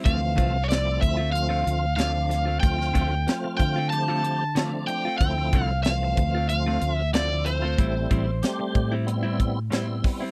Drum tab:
HH |x-x-x-x-x-x-x-x-|x-x-x-x-x-x-x-x-|x-x-x-x-x-x-x-x-|x-x-x-x-x-x-x-o-|
SD |----o-------o-o-|-o--o-------o---|----o-------o---|----o-------o-o-|
BD |o-o---o---------|o-o---o---------|o-o---o---------|o-o---o---o---o-|